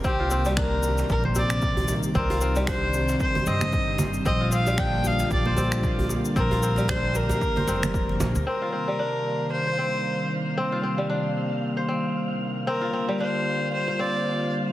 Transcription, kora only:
X:1
M:4/4
L:1/16
Q:"Swing 16ths" 1/4=114
K:Cm
V:1 name="Kora"
C F C G, D z4 c C z4 z | C F C G, D z4 c C z4 z | C F C G, D z4 c C z4 z | C F C G, D z4 c C z4 z |
C F C G, D z4 c C z4 z | C F C G, D z4 c C z4 z | C F C G, D z4 c C z4 z |]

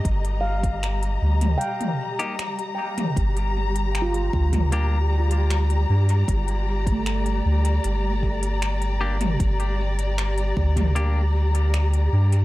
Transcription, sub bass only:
X:1
M:4/4
L:1/8
Q:1/4=77
K:Gm
V:1 name="Sub bass" clef=bass
G,,,3 D,, z4 | G,,,3 D,,4 G,, | G,,,3 D,, G,,,4 | G,,,3 D,,4 G,, |]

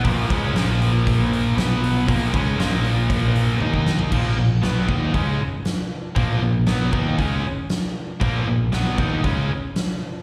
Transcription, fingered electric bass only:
X:1
M:4/4
L:1/8
Q:1/4=118
K:Bbm
V:1 name="Fingered electric bass" clef=bass
B,,, D,, B,,,4 =B,,,2 | B,,, D,, B,,,4 E,,2 | B,,, B,,, _C,, E,, D,, z3 | B,,, B,,, _C,, E,, D,, z3 |
B,,, B,,, _C,, E,, D,, z3 |]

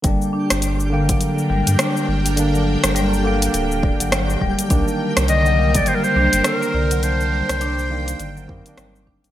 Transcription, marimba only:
X:1
M:4/4
L:1/16
Q:"Swing 16ths" 1/4=103
K:Gm
V:1 name="Marimba" clef=bass
G, z D z3 D, ^F,3 G, z D z3 | D, ^F,3 G, z D z3 D, F,3 G, z | D z3 D, ^F,3 G, z D z3 D, F,- | ^F,2 G, z D z3 D, F,3 G, z D z |]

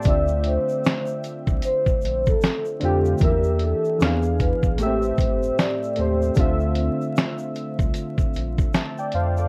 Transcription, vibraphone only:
X:1
M:4/4
L:1/16
Q:"Swing 16ths" 1/4=76
K:Dm
V:1 name="Vibraphone"
d2 c3 z3 c3 A2 z3 | B2 A2 z2 =B z3 c2 d2 z2 | z16 |]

